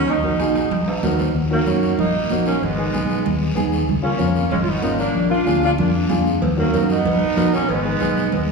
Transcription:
0.08 fingered electric bass D#2, saxophone section D#4, high timbale, long guiro
0.23 fingered electric bass A#1, upright piano D#4 F#4 A#4, high conga
0.40 upright piano D#4 F#4 G#4, high conga, high timbale, short guiro
0.55 high timbale, short guiro
0.71 fingered electric bass A#1, low conga, high timbale, long guiro
0.88 high timbale
1.03 fingered electric bass D#2, upright piano D#4 F#4 A#4, high conga, low conga, low timbale, short guiro
1.19 low timbale, short guiro
1.35 fingered electric bass D#2, high conga, long guiro
1.51 saxophone section F#3 A#3, upright piano D#4 F#4 A#4
1.66 fingered electric bass F#2, upright piano D#4 F#4 C#5, high conga, short guiro
1.82 short guiro
1.98 fingered electric bass A#1, saxophone section A#3 D#4, high conga, low conga, long guiro
2.30 fingered electric bass A#1, upright piano D#4 F#4 A#4, high conga, short guiro
2.46 saxophone section A#3 C#4, short guiro
2.61 fingered electric bass G#1, saxophone section G#3 B3, high conga, low conga, long guiro
2.78 upright piano B3 D#4 G#4
2.93 fingered electric bass B1, upright piano B3 D#4 G#4, high conga, short guiro
3.10 short guiro
3.25 fingered electric bass D#2, high conga, low conga, long guiro
3.55 fingered electric bass D#2, upright piano B3 D#4 G#4, high conga, low conga, short guiro
3.72 short guiro
3.87 fingered electric bass C#2, high conga, low conga, long guiro
4.02 saxophone section A#3 C#4, upright piano C#4 F4 G#4
4.18 fingered electric bass F2, upright piano C#4 F4 A#4, high conga, short guiro
4.35 short guiro
4.51 fingered electric bass G#1, saxophone section G#3 C#4, high conga, low conga, long guiro
4.63 saxophone section F4
4.67 saxophone section B3 D#4
4.82 fingered electric bass G#1, saxophone section G#3 D#4, upright piano C#4 F4 A#4, high conga, short guiro
4.99 saxophone section A#3 D4, short guiro
5.15 fingered electric bass A#1, high conga, long guiro
5.29 upright piano D4 F4 A#4, saxophone section D4 F4
5.46 fingered electric bass D2, upright piano D4 F4 G#4, high conga, short guiro
5.62 saxophone section D4 F4, short guiro
5.78 fingered electric bass F2, saxophone section A#3 D4, high conga, low conga, long guiro
6.09 fingered electric bass F2, upright piano D4 F4 G#4, high conga, low conga, short guiro
6.26 short guiro
6.42 fingered electric bass D#2, cowbell, high conga, low conga, long guiro
6.57 saxophone section F#3 A#3, upright piano D#4 F#4 A#4
6.73 fingered electric bass F#2, upright piano D#4 F#4 A#4, cowbell, high conga, short guiro
6.89 saxophone section B3 D#4, short guiro
7.05 fingered electric bass A#1, cowbell, high conga, low conga, long guiro
7.36 fingered electric bass A#1, upright piano D#4 F#4 A#4, cowbell, high conga, short guiro
7.54 saxophone section A#3 C#4, short guiro
7.69 fingered electric bass G#1, saxophone section G#3 B3, cowbell, high conga, long guiro
7.84 upright piano B3 D#4 G#4
8.00 fingered electric bass B1, upright piano B3 D#4 G#4, cowbell, high conga, short guiro
8.17 short guiro
8.32 fingered electric bass D#2, cowbell, high conga, low conga, long guiro

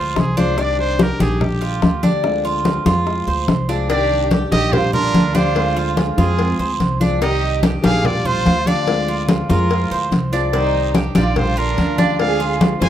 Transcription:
Already playing: upright bass D2, nylon-string guitar F3 G#3 C4 F4, trumpet F4, cuban tres C5
0.16 upright bass C2, muted nylon-string guitar stroke, high bongo, low bongo, high conga, short guiro
0.20 trumpet G#4
0.37 nylon-string guitar F3 G#3 C4 F4, cuban tres D4, trumpet C5, high bongo, high conga, short guiro
0.57 nylon-string guitar C3 D#3 G3 D4 G4, cuban tres D4, trumpet D5, high bongo, high conga, long guiro
0.79 trumpet C5, high bongo, high conga
0.99 nylon-string guitar D#3 G3 D4 G4, cuban tres G4, trumpet A#4, high bongo, high conga, short guiro
1.19 upright bass A#1, nylon-string guitar D#3 G3 D4 G4, cuban tres G4, trumpet G#4, high bongo, high conga, short guiro
1.41 nylon-string guitar D3 G3 D4 G4, trumpet G4, high bongo, high conga, low conga, long guiro
1.61 cuban tres F4, high bongo, high conga
1.82 upright bass D2, muted nylon-string guitar stroke, high bongo, low bongo, high conga, short guiro
2.03 nylon-string guitar G3 D4 G4, cuban tres D4, high conga, short guiro
2.24 nylon-string guitar D3 G#3 C4 F4, high bongo, high conga, long guiro
2.45 cuban tres F4, high conga
2.65 nylon-string guitar D3 G#3 C4 F4, high bongo, high conga, short guiro
2.85 upright bass F2, nylon-string guitar G#3 C4 F4, cuban tres F4, high bongo, high conga, short guiro
3.06 nylon-string guitar F3 G#3 C4 F4, high bongo, high conga, long guiro
3.27 upright bass D2, cuban tres C5, high bongo, high conga
3.48 upright bass C2, muted nylon-string guitar stroke, high bongo, low bongo, high conga, short guiro
3.69 nylon-string guitar F3 G#3 C4 F4, cuban tres D4, high bongo, short guiro
3.89 nylon-string guitar C3 D#3 G3 D4 G4, cuban tres D4, violin section G4, trumpet D5, cowbell, high conga, long guiro
4.11 high conga
4.31 nylon-string guitar D#3 G3 D4 G4, cuban tres G4, cowbell, high conga, short guiro
4.51 upright bass A#1, nylon-string guitar D#3 G3 D4 G4, violin section G4, cuban tres G4, trumpet D#5, cowbell, high conga, short guiro
4.72 nylon-string guitar D3 G3 D4 G4, violin section F4, trumpet C5, cowbell, high conga, low conga, long guiro
4.93 violin section D4, cuban tres F4, trumpet A#4, high conga, low conga
5.14 upright bass D2, muted nylon-string guitar stroke, cowbell, high conga, short guiro
5.34 nylon-string guitar G3 D4 G4, cuban tres D4, violin section F4, trumpet C5, cowbell, high conga, short guiro
5.55 nylon-string guitar D3 G#3 C4 F4, cowbell, high conga, long guiro
5.76 cuban tres F4, high conga
5.96 nylon-string guitar D3 G#3 C4 F4, cowbell, high conga, short guiro
6.17 upright bass F2, nylon-string guitar G#3 C4 F4, violin section C4, cuban tres F4, trumpet G#4, high conga, short guiro
6.38 nylon-string guitar F3 G#3 C4 F4, cowbell, high conga, long guiro
6.59 upright bass D2, cuban tres C5, high conga
6.80 upright bass C2, muted nylon-string guitar stroke, cowbell, high conga, short guiro
7.00 nylon-string guitar F3 G#3 C4 F4, cuban tres D4, high conga, short guiro
7.21 nylon-string guitar C3 D#3 G3 G4, cuban tres D#4, violin section G4, trumpet D#5, cowbell, long guiro
7.43 high conga
7.63 nylon-string guitar D#3 G3 D4 G4, cuban tres G4, cowbell, high conga, short guiro
7.82 upright bass A#1, nylon-string guitar D#3 G3 D4 G4, cuban tres G4, violin section G#4, trumpet F5, cowbell, high conga, short guiro
8.04 nylon-string guitar D3 G3 D4 G4, violin section F4, trumpet D5, cowbell, high conga, low conga, long guiro
8.25 cuban tres F4, violin section F4, trumpet C5, high conga, low conga
8.45 upright bass D2, muted nylon-string guitar stroke, cowbell, high conga, short guiro
8.66 nylon-string guitar G3 D4 G4, cuban tres D4, violin section F4, trumpet D5, cowbell, high conga, short guiro
8.86 nylon-string guitar D3 G#3 C4 F4, cowbell, high conga, long guiro
9.08 cuban tres F4, high conga
9.28 nylon-string guitar D3 G#3 C4 F4, cowbell, high conga, short guiro
9.49 upright bass F2, nylon-string guitar G#3 C4 F4, cuban tres F4, violin section F4, trumpet A#4, high conga, short guiro
9.70 nylon-string guitar F3 G#3 C4 F4, cowbell, high conga, long guiro
9.91 upright bass D2, cuban tres C5, high conga
10.12 upright bass C2, muted nylon-string guitar stroke, cowbell, high conga, short guiro
10.32 nylon-string guitar F3 G#3 C4 F4, cuban tres D4, short guiro
10.53 nylon-string guitar C3 D#3 G3 G4, violin section D#4, trumpet C5, cuban tres D5, cowbell, high conga, long guiro
10.74 high conga
10.95 nylon-string guitar D#3 G3 D4 G4, cuban tres G4, cowbell, high conga, short guiro
11.15 upright bass A#1, nylon-string guitar D#3 G3 D4 G4, violin section F4, cuban tres G4, trumpet D5, cowbell, high conga, short guiro
11.36 nylon-string guitar D3 G3 D4 G4, violin section F4, trumpet C5, cowbell, high conga, low conga, long guiro
11.57 violin section D4, cuban tres F4, trumpet A#4
11.78 upright bass D2, muted nylon-string guitar stroke, cowbell, high conga, short guiro
11.98 nylon-string guitar G3 D4 G4, cuban tres D4, violin section F4, trumpet D5, cowbell, high conga, short guiro
12.19 nylon-string guitar D3 G#3 C4 F4, violin section G#4, trumpet F5, cowbell, high conga, long guiro
12.40 cuban tres F4, high conga
12.60 nylon-string guitar D3 G#3 C4 F4, cowbell, high conga, short guiro
12.81 upright bass F2, nylon-string guitar G#3 C4 F4, cuban tres F4, violin section C5, trumpet G#5, high conga, short guiro

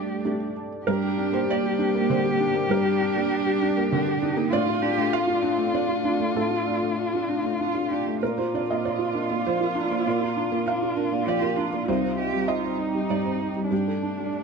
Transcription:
Already playing: felt piano G2 A3 D4 G4, analog synth pad A3 G4 D5, cello D4, violin G4
0.08 marimba D5
0.24 felt piano A3 D4 G4, marimba D5
0.41 marimba G4
0.56 marimba A5
0.73 marimba D5
0.87 felt piano G2 A#4, analog synth pad G3 G4 D5, cello D4, violin G4, marimba G4
1.02 felt piano G4, marimba G5
1.18 felt piano D4, marimba G5
1.33 felt piano A#3 C5, marimba G4
1.49 cello A#3, felt piano D5, marimba G5
1.64 felt piano G4
1.79 felt piano D4, marimba G4
1.95 felt piano A#3, marimba A#4
2.10 felt piano D3 C5, marimba A#4
2.25 felt piano G4, marimba G4
2.40 felt piano D4, marimba G5
2.54 felt piano A#3, marimba A#4
2.69 felt piano G2 A#4, cello D4, marimba G4
2.85 felt piano G4, marimba G5
3.00 felt piano D4, marimba G5
3.16 felt piano A#3, marimba G4
3.30 marimba G5
3.46 felt piano G4
3.62 felt piano D4, marimba G4
3.76 felt piano A#3, marimba A#4
3.92 felt piano D3, cello D4, marimba A#4
4.06 marimba G4, felt piano G4
4.21 felt piano D4, cello D#4, marimba G5
4.37 felt piano A#3, marimba A#4
4.52 felt piano A2 D5, analog synth pad A3 F4 D5, marimba D4, cello F4, violin F4
4.67 felt piano F4, marimba D5
4.82 felt piano D4, cello G4, marimba D5
4.97 felt piano A3, marimba D4
5.13 cello F4, marimba D5, felt piano F5
5.27 felt piano F4
5.43 cello C4, felt piano D4, marimba D4
5.58 felt piano A3, marimba F4
5.73 felt piano D4 D5, cello D4, marimba F4
5.89 marimba D4, felt piano F4
6.05 felt piano D4, marimba D5
6.20 felt piano A3
6.35 felt piano A2 A4, marimba D4, cello F4
6.51 felt piano F4, marimba D5
6.67 felt piano D4, marimba D5
6.81 felt piano A3, marimba D4
6.98 cello D4, marimba D5
7.14 felt piano F4
7.28 marimba D4, felt piano D4, cello D#4
7.44 felt piano A3, marimba F4
7.59 felt piano D4, marimba F4, cello F4
7.75 marimba D4, felt piano F4
7.90 felt piano D4, cello G4, marimba D5
8.06 felt piano A3, marimba F4
8.21 felt piano A#2 A#4, analog synth pad A#3 F4 D5, violin F4, cello F4, marimba A#4
8.37 felt piano F4 C5, marimba A#5
8.52 felt piano D4 D5, marimba A#5
8.67 felt piano A#3 D#5, marimba A#4
8.83 felt piano D5, marimba A#5
8.99 felt piano F4
9.13 felt piano D4, marimba A#4
9.30 felt piano A#3, marimba D5
9.45 felt piano F3 C5, marimba D5
9.61 felt piano F4, marimba A#4
9.75 felt piano D4, marimba A#5
9.91 felt piano A#3, marimba D5
10.06 felt piano A#2 D5, marimba A#4
10.21 felt piano F4, marimba A#5
10.36 felt piano D4, marimba A#5
10.52 felt piano A#3, marimba A#4
10.67 cello D4, felt piano F5, marimba A#5
10.82 felt piano F4
10.97 felt piano D4, marimba A#4
11.12 felt piano A#3, marimba D5
11.26 felt piano F3 D5, cello G4, marimba D5
11.42 felt piano F4, marimba A#4
11.56 felt piano D4, cello F4, marimba A#5
11.73 felt piano A#3, marimba D5
11.87 felt piano C2 C5, analog synth pad G3 D#4 G4, marimba C4, cello D#4
12.03 felt piano C5, marimba C5
12.17 felt piano D#4, cello G4, marimba C5
12.33 felt piano G3, marimba C4
12.48 violin D#4, cello F4, marimba C5, felt piano D#5
12.65 felt piano C5
12.79 marimba C4, felt piano D#4, cello D#4
12.94 felt piano G3, marimba D#4
13.10 felt piano G2 D5, marimba D#4
13.25 marimba C4, felt piano C5
13.39 felt piano D#4, marimba C5
13.56 felt piano G3, marimba D#4
13.70 felt piano G2 G4, analog synth pad A3 D5, cello D4, violin D4, marimba G4
13.87 felt piano A4, marimba A5
14.02 felt piano D4, marimba A5
14.18 felt piano G3, marimba G4
14.33 marimba A5

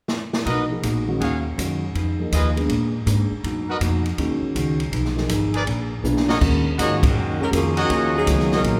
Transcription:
0.08 snare
0.33 snare
0.45 upright bass B1, hollow-body jazz guitar B2 A#3 D#4 F#4, trumpet section F#4 A#4 B4 D#5, kick, ride
0.70 grand piano F3 A#3 D#4 G#4
0.83 upright bass A#1, hollow-body jazz guitar B2 A#3 D#4 F#4, kick, hi-hat pedal, ride
1.08 grand piano D#3 G#3 C#4 F#4
1.20 upright bass D#2, hollow-body jazz guitar D#3 G#3 C#4 F#4, trumpet section F#4 G#4 C#5 F5, kick, ride
1.57 upright bass F#2, hollow-body jazz guitar D#3 G#3 C#4 F#4, kick, hi-hat pedal, ride
1.95 upright bass F2, hollow-body jazz guitar F3 D#4 G#4 B4, kick, ride
2.19 grand piano F3 A#3 D#4 G#4
2.32 upright bass D#2, hollow-body jazz guitar F3 D#4 G#4 B4, trumpet section F4 G#4 B4 D#5, kick, hi-hat pedal, ride
2.56 grand piano G#3 B3 D4 G#4, ride
2.69 upright bass A#2, hollow-body jazz guitar A#3 D4 G#4 B4, kick, ride
3.06 upright bass G#2, hollow-body jazz guitar A#3 D4 G#4 B4, kick, hi-hat pedal, ride
3.31 muted upright bass stroke
3.43 upright bass F#2, hollow-body jazz guitar B2 A#3 D#4 F#4, kick, ride
3.68 trumpet section F#4 A#4 B4 D#5
3.80 upright bass F2, hollow-body jazz guitar B2 A#3 D#4 F#4, kick, hi-hat pedal, ride
4.06 ride
4.18 upright bass D#2, hollow-body jazz guitar D#3 G#3 C#4 F#4, grand piano D#3 G#3 C#4 F#4, kick, ride
4.42 muted upright bass stroke
4.55 upright bass C#2, hollow-body jazz guitar D#3 G#3 C#4 F#4, kick, hi-hat pedal, ride
4.80 ride
4.92 upright bass B1, hollow-body jazz guitar F3 D#4 G#4 B4, kick, ride
5.05 snare
5.16 grand piano F3 A#3 D#4 G#4, snare
5.29 upright bass G#1, hollow-body jazz guitar F3 D#4 G#4 B4, kick, hi-hat pedal, ride
5.54 trumpet section G#4 A#4 B4 D5, ride
5.66 upright bass A#1, hollow-body jazz guitar A#3 D4 G#4 B4, kick, ride
6.03 upright bass B1, hollow-body jazz guitar A#3 D4 G#4 B4, grand piano B3 D4 F4 G#4, hi-hat pedal
6.17 snare
6.29 trumpet section F#4 A#4 C#5 D#5, snare
6.40 upright bass D#2, hollow-body jazz guitar D#3 A#3 C#4 F#4, grand piano G#3 C#4 F#4 A#4, kick, crash
6.78 upright bass G#2, hollow-body jazz guitar D#3 A#3 C#4 F#4, saxophone section F3 A#3 C#4 G#4, trumpet section F#4 A#4 C#5 D#5, kick, hi-hat pedal, ride
7.03 saxophone section D#3 A#3 C#4 F#4, kick, ride
7.14 upright bass F#2, hollow-body jazz guitar D#3 A#3 C#4 F#4
7.40 saxophone section F#3 C#4 D#4 A#4, grand piano G#3 C#4 F#4 A#4
7.52 upright bass F2, hollow-body jazz guitar D#3 A#3 C#4 F#4, kick, hi-hat pedal, ride
7.56 saxophone section F3 A#3 C#4 G#4
7.77 saxophone section C#4, trumpet section F#4 A#4 C#5 D#5, ride
7.81 saxophone section D#3 A#3 F#4
7.89 upright bass D#2, hollow-body jazz guitar D#3 A#3 C#4 F#4, kick, ride
7.94 saxophone section F3 A#3 C#4 G#4
8.18 saxophone section F#3 C#4 D#4 G#4
8.27 upright bass C#2, hollow-body jazz guitar D#3 A#3 C#4 F#4, grand piano F#3 B3 F4 G#4, kick, hi-hat pedal, ride
8.40 snare
8.52 saxophone section F#3 C#4 D#4 A#4, trumpet section F#4 A#4 C#5 D#5, snare
8.64 upright bass A#1, hollow-body jazz guitar D#3 A#3 C#4 F#4, kick, ride

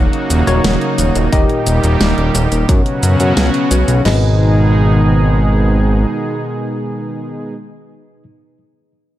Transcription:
Already playing: analog synth pad C#3 F#3 A#3 D#4 F#4, tine electric piano D#4 F#4 A#4 C#5
0.13 closed hi-hat
0.30 analog synth bass D#1, closed hi-hat, shaker
0.47 analog synth bass D#1, tine electric piano D#4 F#4 A#4 C#5, closed hi-hat, shaker
0.64 analog synth bass D#1, snare, closed hi-hat, shaker
0.81 closed hi-hat
0.98 analog synth bass D#1, closed hi-hat, shaker
1.15 analog synth bass D#1, closed hi-hat, shaker
1.32 analog synth bass D#1, analog synth pad A#2 D#3 G3 G4, tine electric piano D#4 G4 A#4 D#5, kick, closed hi-hat, shaker
1.50 closed hi-hat
1.67 analog synth bass D#1, closed hi-hat, shaker
1.84 analog synth bass D#1, closed hi-hat, shaker
2.01 analog synth bass D#1, snare, closed hi-hat, shaker
2.18 analog synth bass D#1, closed hi-hat
2.35 analog synth bass D#1, closed hi-hat, shaker
2.52 analog synth bass D#1, closed hi-hat, shaker
2.69 analog synth bass F#2, analog synth pad B2 C#3 F#3 C#4 F#4, kick, closed hi-hat, shaker
2.86 closed hi-hat
3.03 analog synth bass F#2, closed hi-hat, shaker
3.20 analog synth bass F#2, closed hi-hat, shaker
3.37 analog synth bass C#2, snare, closed hi-hat, shaker
3.54 closed hi-hat
3.71 analog synth bass B1, tine electric piano C#4 F#4 B4 C#5, closed hi-hat, shaker
3.88 analog synth bass B1, closed hi-hat, shaker
4.05 analog synth bass G#1, analog synth pad B2 D#3 G#3 D#4 G#4, tine electric piano D#4 G#4 B4 D#5, snare, crash

